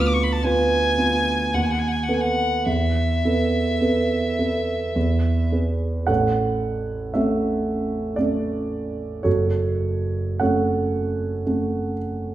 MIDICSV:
0, 0, Header, 1, 3, 480
1, 0, Start_track
1, 0, Key_signature, 3, "major"
1, 0, Tempo, 1086957
1, 674, Tempo, 1140684
1, 1153, Time_signature, 3, 2, 24, 8
1, 2594, Tempo, 1058201
1, 4034, Tempo, 1162791
1, 4514, Tempo, 1025641
1, 5412, End_track
2, 0, Start_track
2, 0, Title_t, "Violin"
2, 0, Program_c, 0, 40
2, 5, Note_on_c, 0, 89, 59
2, 32, Note_on_c, 0, 86, 53
2, 38, Note_off_c, 0, 89, 0
2, 60, Note_on_c, 0, 85, 53
2, 66, Note_off_c, 0, 86, 0
2, 103, Note_on_c, 0, 83, 50
2, 110, Note_off_c, 0, 85, 0
2, 144, Note_on_c, 0, 81, 57
2, 151, Note_off_c, 0, 83, 0
2, 199, Note_on_c, 0, 80, 74
2, 206, Note_off_c, 0, 81, 0
2, 681, Note_on_c, 0, 78, 48
2, 688, Note_off_c, 0, 80, 0
2, 719, Note_on_c, 0, 80, 51
2, 725, Note_off_c, 0, 78, 0
2, 750, Note_on_c, 0, 78, 53
2, 756, Note_off_c, 0, 80, 0
2, 786, Note_on_c, 0, 80, 52
2, 792, Note_off_c, 0, 78, 0
2, 823, Note_on_c, 0, 78, 52
2, 830, Note_off_c, 0, 80, 0
2, 840, Note_on_c, 0, 80, 52
2, 846, Note_off_c, 0, 78, 0
2, 887, Note_on_c, 0, 78, 50
2, 893, Note_off_c, 0, 80, 0
2, 930, Note_on_c, 0, 80, 49
2, 936, Note_off_c, 0, 78, 0
2, 957, Note_on_c, 0, 78, 59
2, 963, Note_off_c, 0, 80, 0
2, 1150, Note_on_c, 0, 76, 57
2, 1156, Note_off_c, 0, 78, 0
2, 2354, Note_off_c, 0, 76, 0
2, 5412, End_track
3, 0, Start_track
3, 0, Title_t, "Grand piano"
3, 0, Program_c, 1, 0
3, 0, Control_c, 1, 64, 127
3, 0, Note_on_c, 1, 38, 51
3, 0, Note_on_c, 1, 59, 42
3, 0, Note_on_c, 1, 65, 38
3, 0, Note_on_c, 1, 71, 45
3, 173, Note_off_c, 1, 59, 0
3, 174, Note_off_c, 1, 65, 0
3, 176, Note_off_c, 1, 71, 0
3, 192, Note_on_c, 1, 59, 40
3, 194, Note_on_c, 1, 65, 41
3, 197, Note_on_c, 1, 71, 47
3, 414, Note_off_c, 1, 59, 0
3, 415, Note_off_c, 1, 65, 0
3, 417, Note_off_c, 1, 71, 0
3, 432, Note_on_c, 1, 59, 37
3, 434, Note_on_c, 1, 65, 36
3, 437, Note_on_c, 1, 71, 38
3, 657, Note_off_c, 1, 59, 0
3, 658, Note_off_c, 1, 65, 0
3, 660, Note_off_c, 1, 71, 0
3, 679, Note_on_c, 1, 39, 52
3, 682, Control_c, 1, 64, 0
3, 685, Note_off_c, 1, 38, 0
3, 747, Control_c, 1, 64, 127
3, 905, Note_off_c, 1, 39, 0
3, 909, Note_on_c, 1, 59, 32
3, 911, Note_on_c, 1, 69, 34
3, 911, Note_on_c, 1, 71, 38
3, 1136, Note_off_c, 1, 59, 0
3, 1137, Note_off_c, 1, 69, 0
3, 1137, Note_off_c, 1, 71, 0
3, 1152, Note_on_c, 1, 40, 42
3, 1162, Control_c, 1, 64, 0
3, 1242, Control_c, 1, 64, 127
3, 1390, Note_off_c, 1, 40, 0
3, 1400, Note_on_c, 1, 59, 36
3, 1401, Note_on_c, 1, 69, 37
3, 1404, Note_on_c, 1, 71, 37
3, 1625, Note_off_c, 1, 59, 0
3, 1625, Note_off_c, 1, 69, 0
3, 1626, Note_off_c, 1, 71, 0
3, 1635, Note_on_c, 1, 59, 36
3, 1641, Note_on_c, 1, 69, 34
3, 1643, Note_on_c, 1, 71, 39
3, 1860, Note_off_c, 1, 59, 0
3, 1863, Note_off_c, 1, 69, 0
3, 1864, Note_off_c, 1, 71, 0
3, 1879, Note_on_c, 1, 59, 31
3, 1880, Note_on_c, 1, 69, 30
3, 1882, Note_on_c, 1, 71, 32
3, 2099, Note_off_c, 1, 59, 0
3, 2099, Note_off_c, 1, 69, 0
3, 2100, Note_off_c, 1, 71, 0
3, 2118, Note_on_c, 1, 40, 44
3, 2125, Control_c, 1, 64, 0
3, 2207, Control_c, 1, 64, 127
3, 2349, Note_off_c, 1, 40, 0
3, 2355, Note_on_c, 1, 68, 31
3, 2357, Note_on_c, 1, 59, 30
3, 2359, Note_on_c, 1, 71, 36
3, 2575, Note_off_c, 1, 68, 0
3, 2576, Note_off_c, 1, 59, 0
3, 2578, Note_off_c, 1, 71, 0
3, 2584, Note_on_c, 1, 78, 65
3, 2588, Note_on_c, 1, 73, 51
3, 2589, Note_on_c, 1, 69, 52
3, 2591, Note_on_c, 1, 33, 42
3, 2601, Control_c, 1, 64, 0
3, 2667, Control_c, 1, 64, 127
3, 3059, Note_off_c, 1, 73, 0
3, 3060, Note_off_c, 1, 69, 0
3, 3064, Note_off_c, 1, 33, 0
3, 3069, Note_on_c, 1, 76, 56
3, 3073, Note_on_c, 1, 73, 45
3, 3075, Note_off_c, 1, 78, 0
3, 3075, Note_on_c, 1, 69, 42
3, 3077, Note_on_c, 1, 57, 35
3, 3078, Note_on_c, 1, 61, 39
3, 3527, Note_off_c, 1, 73, 0
3, 3528, Note_off_c, 1, 69, 0
3, 3529, Note_off_c, 1, 57, 0
3, 3530, Note_off_c, 1, 61, 0
3, 3534, Note_on_c, 1, 74, 64
3, 3543, Note_on_c, 1, 61, 37
3, 3544, Note_off_c, 1, 76, 0
3, 3544, Note_on_c, 1, 57, 34
3, 4010, Note_off_c, 1, 57, 0
3, 4010, Note_off_c, 1, 61, 0
3, 4019, Note_on_c, 1, 73, 59
3, 4024, Note_off_c, 1, 74, 0
3, 4025, Note_on_c, 1, 66, 45
3, 4025, Note_on_c, 1, 69, 46
3, 4027, Note_on_c, 1, 30, 43
3, 4039, Control_c, 1, 64, 0
3, 4123, Control_c, 1, 64, 127
3, 4492, Note_off_c, 1, 66, 0
3, 4492, Note_off_c, 1, 69, 0
3, 4495, Note_off_c, 1, 30, 0
3, 4500, Note_off_c, 1, 73, 0
3, 4501, Note_on_c, 1, 78, 60
3, 4506, Note_on_c, 1, 69, 49
3, 4507, Note_on_c, 1, 57, 35
3, 4507, Note_on_c, 1, 73, 49
3, 4511, Note_on_c, 1, 61, 41
3, 4980, Note_off_c, 1, 57, 0
3, 4982, Note_off_c, 1, 61, 0
3, 5000, Note_on_c, 1, 57, 33
3, 5003, Note_on_c, 1, 61, 36
3, 5215, Note_off_c, 1, 69, 0
3, 5215, Note_off_c, 1, 73, 0
3, 5231, Note_off_c, 1, 78, 0
3, 5412, Note_off_c, 1, 57, 0
3, 5412, Note_off_c, 1, 61, 0
3, 5412, End_track
0, 0, End_of_file